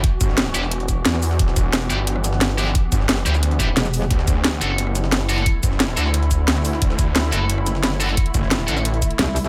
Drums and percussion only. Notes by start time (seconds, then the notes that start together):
0.04 kick, closed hi-hat
0.21 kick, closed hi-hat, shaker
0.29 snare
0.38 snare, closed hi-hat
0.46 snare
0.54 closed hi-hat, shaker
0.63 snare
0.71 closed hi-hat
0.80 closed hi-hat
0.88 kick, closed hi-hat, shaker
1.05 snare, closed hi-hat
1.14 snare
1.22 closed hi-hat, open hi-hat, shaker
1.31 snare
1.39 kick, closed hi-hat
1.48 snare
1.56 kick, cross-stick, closed hi-hat, shaker
1.73 snare, closed hi-hat
1.82 snare
1.90 closed hi-hat, shaker
2.07 closed hi-hat
2.16 cross-stick
2.24 snare, closed hi-hat, shaker
2.33 snare
2.41 snare, closed hi-hat
2.50 snare
2.58 closed hi-hat, open hi-hat, shaker
2.67 snare
2.75 kick, closed hi-hat
2.92 kick, closed hi-hat, shaker
3.00 snare
3.09 snare, closed hi-hat
3.17 snare
3.26 closed hi-hat, shaker
3.34 cross-stick, snare, shaker
3.43 closed hi-hat
3.51 closed hi-hat
3.60 kick, closed hi-hat, shaker
3.77 snare, closed hi-hat
3.85 snare, shaker
3.94 closed hi-hat, open hi-hat, shaker
4.02 snare
4.11 kick, closed hi-hat
4.19 snare
4.28 kick, cross-stick, closed hi-hat, shaker
4.44 snare, closed hi-hat
4.53 snare
4.61 closed hi-hat, shaker
4.78 closed hi-hat
4.87 cross-stick
4.95 snare, closed hi-hat, shaker
5.04 snare
5.12 snare, closed hi-hat
5.21 snare
5.29 closed hi-hat, open hi-hat, shaker
5.38 closed hi-hat
5.46 kick, closed hi-hat
5.63 kick, closed hi-hat, shaker
5.72 snare
5.80 snare, closed hi-hat
5.89 snare
5.97 closed hi-hat, shaker
6.06 snare
6.14 closed hi-hat
6.23 closed hi-hat
6.31 kick, closed hi-hat, shaker
6.48 snare, closed hi-hat
6.56 snare
6.65 closed hi-hat, open hi-hat, shaker
6.73 snare
6.82 kick, closed hi-hat
6.90 snare
6.99 kick, cross-stick, closed hi-hat, shaker
7.16 snare, closed hi-hat
7.24 snare
7.33 closed hi-hat, shaker
7.50 closed hi-hat
7.58 cross-stick
7.66 snare, closed hi-hat, shaker
7.75 snare
7.83 snare, closed hi-hat
7.92 snare
8.00 closed hi-hat, open hi-hat, shaker
8.09 closed hi-hat
8.17 kick, closed hi-hat
8.26 closed hi-hat
8.34 kick, cross-stick, closed hi-hat, shaker
8.43 snare
8.51 snare, closed hi-hat
8.60 snare
8.68 closed hi-hat, shaker
8.77 cross-stick, snare, shaker
8.85 closed hi-hat
8.94 closed hi-hat
9.02 kick, closed hi-hat, shaker
9.11 closed hi-hat
9.19 snare, closed hi-hat
9.28 snare
9.36 closed hi-hat, open hi-hat, shaker
9.44 snare, shaker